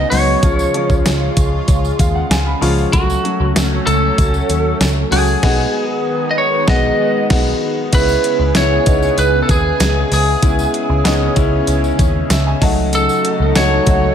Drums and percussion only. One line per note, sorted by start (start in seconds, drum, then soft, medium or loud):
0.12 open hi-hat medium
0.12 tambourine soft
0.43 kick loud
0.43 closed hi-hat medium
0.43 tambourine soft
0.59 tambourine soft
0.74 closed hi-hat medium
0.90 kick medium
0.90 tambourine soft
1.06 snare loud
1.06 closed hi-hat medium
1.06 tambourine medium
1.37 kick medium
1.37 closed hi-hat medium
1.37 tambourine soft
1.68 kick medium
1.68 closed hi-hat medium
1.68 tambourine soft
1.85 tambourine soft
1.99 kick medium
1.99 closed hi-hat medium
1.99 tambourine soft
2.31 snare loud
2.31 closed hi-hat medium
2.31 tambourine medium
2.62 open hi-hat medium
2.62 tambourine soft
2.78 tambourine soft
2.93 kick loud
2.93 closed hi-hat medium
2.93 tambourine medium
3.10 tambourine soft
3.25 closed hi-hat medium
3.56 snare loud
3.56 closed hi-hat medium
3.56 tambourine medium
3.87 closed hi-hat medium
3.87 tambourine soft
4.18 kick medium
4.18 closed hi-hat medium
4.18 tambourine soft
4.34 tambourine soft
4.49 closed hi-hat medium
4.49 tambourine soft
4.81 snare loud
4.81 closed hi-hat medium
4.81 tambourine medium
5.12 open hi-hat medium
5.12 tambourine soft
5.28 tambourine soft
5.43 kick loud
5.43 snare loud
5.43 crash medium
6.68 kick loud
6.68 snare loud
7.30 kick loud
7.30 snare loud
7.30 crash medium
7.93 kick loud
7.93 closed hi-hat medium
7.93 crash medium
7.93 tambourine medium
8.09 tambourine soft
8.24 closed hi-hat medium
8.55 snare loud
8.55 closed hi-hat medium
8.55 tambourine medium
8.86 kick loud
8.86 closed hi-hat medium
8.86 tambourine soft
9.03 tambourine soft
9.18 closed hi-hat medium
9.18 tambourine soft
9.49 kick medium
9.49 closed hi-hat medium
9.49 tambourine soft
9.80 snare loud
9.80 closed hi-hat medium
9.80 tambourine medium
10.12 open hi-hat medium
10.12 tambourine soft
10.43 kick loud
10.43 closed hi-hat medium
10.43 tambourine medium
10.59 tambourine medium
10.74 closed hi-hat medium
11.05 snare loud
11.05 closed hi-hat medium
11.05 tambourine medium
11.36 kick medium
11.36 closed hi-hat medium
11.36 tambourine medium
11.67 closed hi-hat medium
11.67 tambourine soft
11.84 tambourine soft
11.99 kick medium
11.99 closed hi-hat medium
11.99 tambourine soft
12.30 snare loud
12.30 closed hi-hat medium
12.30 tambourine medium
12.62 kick loud
12.62 open hi-hat medium
12.62 tambourine soft
12.93 closed hi-hat medium
12.93 tambourine medium
13.09 tambourine medium
13.25 closed hi-hat medium
13.55 snare loud
13.55 closed hi-hat medium
13.55 tambourine medium
13.86 kick medium
13.86 closed hi-hat medium
13.86 tambourine soft